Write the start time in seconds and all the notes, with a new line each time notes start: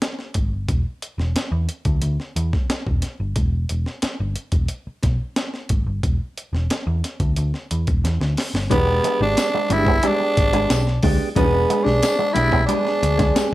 0.02 snare, closed hi-hat
0.19 snare
0.34 G#1, kick, closed hi-hat
0.52 G1
0.69 E1, kick, closed hi-hat
1.02 closed hi-hat
1.18 E1, snare
1.35 muted picked electric bass stroke, snare, closed hi-hat
1.52 E2
1.69 closed hi-hat
1.85 D2, kick, closed hi-hat
2.02 D2, closed hi-hat
2.20 snare
2.36 E2, closed hi-hat
2.53 kick, snare
2.69 muted picked electric bass stroke, snare, closed hi-hat
2.87 E1, kick
3.02 snare, closed hi-hat
3.20 G1
3.36 E1, kick, closed hi-hat
3.69 E1, closed hi-hat
3.86 snare
4.02 muted picked electric bass stroke, snare, closed hi-hat
4.20 G1
4.36 closed hi-hat
4.52 E1, kick, closed hi-hat
4.68 closed hi-hat
4.87 muted picked electric bass stroke
5.03 B1, kick, snare, closed hi-hat
5.36 snare, closed hi-hat
5.54 snare
5.69 G#1, kick, closed hi-hat
5.86 G1
6.03 E1, kick, closed hi-hat
6.38 closed hi-hat
6.53 E1, snare
6.70 muted picked electric bass stroke, snare, closed hi-hat
6.87 E2
7.04 snare, closed hi-hat
7.20 D2, kick, closed hi-hat
7.36 D2, closed hi-hat
7.54 snare
7.71 E2, closed hi-hat
7.87 E1, kick, closed hi-hat
8.04 E2, snare, closed hi-hat
8.20 D2, snare
8.37 snare, open hi-hat
8.54 G1, snare
8.70 E1 E3 G#3 B3 D4 G4, kick, closed hi-hat
8.87 muted clean electric guitar stroke
9.03 G#3, muted clean electric guitar stroke, closed hi-hat
9.21 G#1 G#3 D4 G4
9.37 muted clean electric guitar stroke, snare, closed hi-hat, tambourine
9.54 G#3, muted clean electric guitar stroke
9.70 G1 G#3 B3 D4 E4 G4, muted clean electric guitar stroke, closed hi-hat
9.87 B3, muted clean electric guitar stroke, kick
10.03 G3 G#3 B3 D4 G4, closed hi-hat
10.10 G#3
10.20 muted clean electric guitar stroke
10.37 G#1, muted clean electric guitar stroke, kick, snare, closed hi-hat
10.53 G#3 D4 G#4, closed hi-hat
10.70 B1, muted clean electric guitar stroke, snare, closed hi-hat, tambourine
10.87 snare
11.02 D2 G#3 B3 D4 G4, kick, open hi-hat
11.19 muted clean electric guitar stroke
11.35 E1 E3 G#3 B3 D4 G4 G#4, kick, closed hi-hat
11.54 muted clean electric guitar stroke
11.69 G#3, muted clean electric guitar stroke, closed hi-hat
11.84 B1 G#3 D4 G4, snare
12.02 snare, closed hi-hat, tambourine
12.19 G#3, muted clean electric guitar stroke
12.33 B1 G#3 B3 D4 E4 G4, muted clean electric guitar stroke, closed hi-hat
12.52 B3, muted clean electric guitar stroke, kick
12.66 G3 G#3 B3 D4 G4, closed hi-hat
12.70 G4
12.76 G#4
12.85 muted clean electric guitar stroke, snare
13.02 D2, muted clean electric guitar stroke, closed hi-hat
13.18 G#3 D4 G#4, kick, snare, closed hi-hat
13.34 G#3 D4 G4, muted picked electric bass stroke, snare, closed hi-hat, tambourine
13.51 muted clean electric guitar stroke